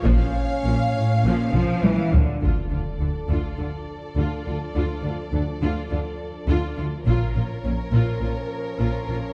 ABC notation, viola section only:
X:1
M:4/4
L:1/8
Q:1/4=103
K:Dm
V:1 name="Viola section"
[F,B,] z [F,B,] z [F,B,] [F,B,] [F,B,] [F,B,] | F F D F F z F F | F F D F F z F F | F F _D F F z F F |]